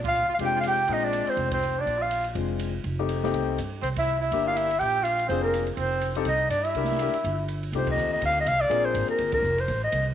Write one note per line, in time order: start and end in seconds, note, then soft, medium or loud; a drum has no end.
0.00 0.26 A#1 medium
0.04 0.27 F4 medium
0.04 kick medium
0.04 ride medium
0.08 0.29 F5 medium
0.15 hi-hat pedal soft
0.29 0.34 F4 medium
0.29 muted upright bass stroke soft
0.34 0.38 F5 medium
0.39 0.86 F1 medium
0.39 0.75 G#3 medium
0.39 0.76 C4 soft
0.39 0.76 D4 soft
0.39 0.76 F4 medium
0.39 0.55 G4 medium
0.39 kick soft
0.39 ride medium
0.45 0.58 G5 loud
0.56 0.60 F4 medium
0.61 0.63 F5 medium
0.61 hi-hat pedal medium
0.61 ride medium
0.66 0.91 G4 medium
0.66 0.95 G5 loud
0.88 1.24 A#1 medium
0.88 1.56 G#3 soft
0.88 1.56 C4 soft
0.88 1.56 D4 soft
0.88 1.05 D#4 medium
0.88 1.56 F4 medium
0.88 kick soft
0.88 ride medium
0.93 1.06 D#5 medium
1.03 1.28 D4 medium
1.03 1.31 D5 medium
1.13 hi-hat pedal medium
1.13 ride medium
1.27 1.51 C4 medium
1.27 1.53 C5 medium
1.27 muted upright bass stroke soft
1.27 ride soft
1.37 1.83 F1 medium
1.37 kick soft
1.37 ride soft
1.51 1.80 C4 medium
1.51 1.82 C5 medium
1.51 kick medium
1.51 ride medium
1.62 hi-hat pedal medium
1.78 2.00 D4 medium
1.78 2.04 D5 medium
1.86 2.33 A#1 medium
1.86 kick soft
1.86 ride soft
1.98 2.24 F4 medium
2.02 2.26 F5 medium
2.11 hi-hat pedal soft
2.11 ride medium
2.24 ride soft
2.35 2.82 F1 medium
2.35 2.71 G#3 soft
2.35 2.70 C4 soft
2.35 2.71 D4 soft
2.35 2.71 F4 soft
2.35 kick soft
2.35 ride medium
2.59 hi-hat pedal medium
2.59 ride medium
2.84 3.30 F1 medium
2.84 kick soft
2.84 ride soft
2.99 3.22 A3 medium
2.99 3.22 C4 medium
2.99 3.22 D#4 medium
2.99 3.22 G4 medium
3.09 hi-hat pedal soft
3.09 ride medium
3.24 3.56 A3 medium
3.24 3.56 C4 medium
3.24 3.56 D#4 medium
3.24 3.56 G4 medium
3.24 snare soft
3.34 3.56 C2 medium
3.34 kick soft
3.34 ride medium
3.58 3.81 G2 medium
3.58 hi-hat pedal medium
3.58 ride medium
3.82 4.28 C2 medium
3.82 3.88 C4 medium
3.82 3.89 C5 medium
3.82 kick soft
3.82 ride medium
3.96 4.19 E4 medium
3.96 4.20 E5 medium
3.96 kick medium
3.96 ride medium
4.07 hi-hat pedal soft
4.20 4.45 E4 medium
4.20 4.46 E5 medium
4.32 4.78 G1 medium
4.32 4.68 A#3 medium
4.32 4.67 D4 medium
4.32 4.67 E4 medium
4.32 4.68 G4 medium
4.32 kick soft
4.32 ride medium
4.46 4.54 F4 medium
4.46 4.59 F5 medium
4.53 4.80 E4 medium
4.53 hi-hat pedal medium
4.53 ride medium
4.57 4.81 E5 loud
4.71 ride soft
4.79 5.27 A#1 medium
4.79 5.04 G4 medium
4.79 5.05 G5 medium
4.79 kick soft
4.79 ride soft
5.03 5.26 F4 medium
5.03 5.28 F5 medium
5.03 hi-hat pedal medium
5.03 ride medium
5.19 ride soft
5.27 5.75 F1 medium
5.27 5.41 C4 medium
5.27 5.65 C4 medium
5.27 5.65 D4 medium
5.27 5.65 F4 medium
5.27 5.42 C5 medium
5.27 kick soft
5.27 ride soft
5.31 5.65 G#4 medium
5.41 5.65 A#3 medium
5.41 5.65 A#4 medium
5.54 hi-hat pedal soft
5.54 ride medium
5.67 ride soft
5.76 6.24 F1 medium
5.76 6.12 C4 medium
5.76 6.13 C5 medium
5.76 kick soft
5.76 ride medium
6.01 hi-hat pedal soft
6.01 ride medium
6.15 6.26 C4 medium
6.15 6.26 D#4 medium
6.15 6.26 G4 medium
6.15 6.26 A4 medium
6.15 ride soft
6.25 6.49 C2 medium
6.25 6.49 D#4 medium
6.25 6.49 D#5 medium
6.25 kick soft
6.25 ride medium
6.49 6.73 G2 medium
6.49 6.64 D4 medium
6.49 6.66 D5 medium
6.49 hi-hat pedal medium
6.49 ride medium
6.62 7.48 E4 medium
6.62 7.49 E5 medium
6.62 ride soft
6.75 7.11 C2 medium
6.75 7.00 D4 medium
6.75 6.99 E4 soft
6.75 7.00 G4 soft
6.75 6.99 A#4 medium
6.75 kick soft
6.75 ride medium
6.84 snare soft
6.92 snare soft
6.99 7.13 D4 medium
6.99 7.13 E4 soft
6.99 7.13 G4 medium
6.99 7.14 A#4 medium
6.99 hi-hat pedal medium
6.99 ride medium
7.14 muted upright bass stroke soft
7.14 ride soft
7.24 7.71 G1 medium
7.24 kick soft
7.24 ride medium
7.48 hi-hat pedal soft
7.48 ride medium
7.63 ride soft
7.72 7.96 C2 medium
7.72 8.41 A3 medium
7.72 8.41 C4 soft
7.72 8.42 D#4 soft
7.72 8.41 F4 soft
7.72 8.41 G4 medium
7.72 kick soft
7.72 ride medium
7.76 7.88 C5 medium
7.87 kick medium
7.87 crash medium
7.91 8.12 D#5 medium
7.97 8.21 D#2 medium
7.97 hi-hat pedal medium
8.13 8.22 D#5 medium
8.21 8.45 D2 medium
8.21 kick soft
8.21 ride medium
8.26 8.39 F5 loud
8.40 8.50 D#5 medium
8.46 8.69 C2 medium
8.46 8.62 F5 loud
8.46 kick soft
8.46 hi-hat pedal medium
8.46 ride medium
8.61 8.86 D5 loud
8.69 8.93 A#1 medium
8.69 9.37 A#3 medium
8.69 9.38 C4 medium
8.69 9.37 D4 medium
8.69 9.37 F4 medium
8.69 9.37 G#4 medium
8.69 kick soft
8.69 ride medium
8.85 9.09 C5 medium
8.94 9.08 G#1 medium
8.94 kick soft
8.94 hi-hat pedal medium
8.94 ride medium
9.08 9.32 A#4 medium
9.08 ride soft
9.18 9.42 G1 medium
9.18 kick soft
9.18 ride medium
9.32 9.62 A#4 medium
9.32 kick medium
9.32 crash medium
9.42 9.67 F1 medium
9.42 hi-hat pedal medium
9.58 9.82 C5 medium
9.58 ride soft
9.68 9.92 A1 medium
9.68 kick soft
9.68 ride medium
9.84 10.06 D#5 medium
9.92 10.14 C2 medium
9.92 kick soft
9.92 hi-hat pedal medium
9.92 ride medium